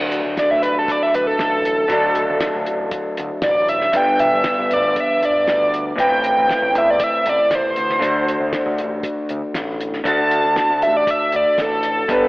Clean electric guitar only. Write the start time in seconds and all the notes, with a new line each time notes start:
Already playing: D3 F#3 A3 D4
1.88 D3 F#3 A3 D4
3.92 G2 D3 G3 B3 D4
5.96 A2 E3 A3 C4 E4
6.00 B4
7.99 D3 A3 D4 F#4 A4
10.04 D3 A3 D4 F#4 A4
12.08 G3 B3 D4 G4 B4